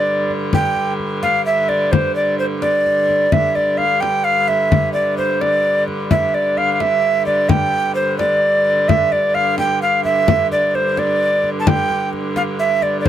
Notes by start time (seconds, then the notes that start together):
Already playing: G2 D3 D5
0.30 frame drum
0.53 G5, frame drum
0.76 frame drum
0.99 frame drum
1.23 F5, frame drum
1.46 E5
1.69 D5, frame drum
1.92 C5, frame drum
2.15 D5
2.39 C5
2.62 D5, frame drum
2.86 frame drum
3.09 frame drum
3.32 G2 D3 E5, frame drum
3.55 D5, frame drum
3.78 F5, frame drum
4.01 G5, frame drum
4.24 F5
4.48 E5, frame drum
4.72 frame drum
4.93 D5, frame drum
5.18 C5, frame drum
5.41 D5, frame drum
5.88 frame drum
6.11 E5, frame drum
6.34 D5, frame drum
6.58 F5, frame drum
6.72 F5
6.80 E5, frame drum
7.26 D5, frame drum
7.49 G5, frame drum
7.95 C5
8.18 D5, frame drum
8.88 G2 D3 E5, frame drum
9.12 D5, frame drum
9.35 F5, frame drum
9.58 G5, frame drum
9.82 F5
10.05 E5, frame drum
10.28 frame drum
10.51 D5, frame drum
10.74 C5, frame drum
10.97 D5, frame drum
11.44 frame drum
11.60 A5
11.67 G5, frame drum
11.90 frame drum
12.13 frame drum
12.36 F5, frame drum
12.59 E5
12.82 D5, frame drum
13.00 D5
13.06 C5, frame drum